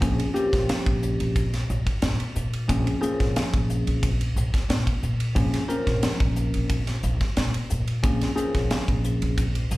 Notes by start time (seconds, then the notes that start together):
0.01 A#1 F3 A#3 C4 C#4 G#4, kick, hi-hat pedal, ride
0.20 ride
0.34 F3 A#3 C4 C#4 G4, muted upright bass stroke, hi-hat pedal
0.53 A#1, kick, snare, ride
0.69 snare, hi-hat pedal, ride
0.86 A#1, kick, ride
1.03 hi-hat pedal
1.20 A#1, ride
1.36 kick, hi-hat pedal, ride
1.54 snare, ride
1.70 A#1, hi-hat pedal
1.87 muted upright bass stroke, kick, ride
2.02 A#2, snare, hi-hat pedal, ride
2.20 muted upright bass stroke, ride
2.36 A#2, hi-hat pedal
2.53 ride
2.68 A#1 F3 A#3 C4 C#4 G#4, kick, hi-hat pedal, ride
2.87 ride
3.01 F3 A#3 C4 C#4 G#4, muted upright bass stroke, hi-hat pedal
3.20 A#1, kick, snare, ride
3.36 snare, hi-hat pedal, ride
3.54 A#1, kick, ride
3.70 hi-hat pedal
3.87 A#1, ride
4.03 kick, hi-hat pedal, ride
4.21 ride
4.36 A#1, hi-hat pedal
4.54 muted upright bass stroke, kick, snare, ride
4.69 A#2, snare, hi-hat pedal, ride
4.87 muted upright bass stroke, kick, ride
5.03 A#2, hi-hat pedal
5.20 ride
5.35 A#1 F3 A#3 C4 C#4 G#4, kick, hi-hat pedal, ride
5.54 snare, ride
5.68 F3 A#3 C4 C#4 A#4, muted upright bass stroke, hi-hat pedal
5.87 A#1, kick, snare, ride
6.03 snare, hi-hat pedal, ride
6.20 A#1, kick, ride
6.36 hi-hat pedal
6.54 A#1, ride
6.70 kick, hi-hat pedal, ride
6.87 snare, ride
7.03 A#1, hi-hat pedal
7.21 kick, snare, ride
7.37 A#2, snare, hi-hat pedal, ride
7.54 muted upright bass stroke, ride
7.70 A#2, hi-hat pedal
7.88 ride
8.03 A#1 F3 A#3 C4 C#4 G#4, kick, hi-hat pedal, ride
8.21 snare, ride
8.36 F3 A#3 C4 C#4 G#4, muted upright bass stroke, hi-hat pedal
8.55 A#1, kick, snare, ride
8.71 snare, hi-hat pedal, ride
8.88 A#1, kick, ride
9.04 hi-hat pedal
9.22 A#1, ride
9.38 kick, hi-hat pedal, ride
9.55 ride
9.71 A#1, hi-hat pedal